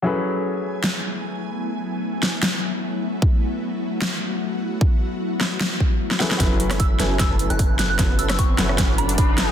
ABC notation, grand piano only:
X:1
M:4/4
L:1/8
Q:"Swing 16ths" 1/4=151
K:F#m
V:1 name="Grand piano"
[F,CEGAB]8- | [F,CEGAB]8- | [F,CEGAB]8- | [F,CEGAB]6- [F,CEGAB] [F,CEGAB] |
[F,CEAB]8- | [F,CEAB]8 |]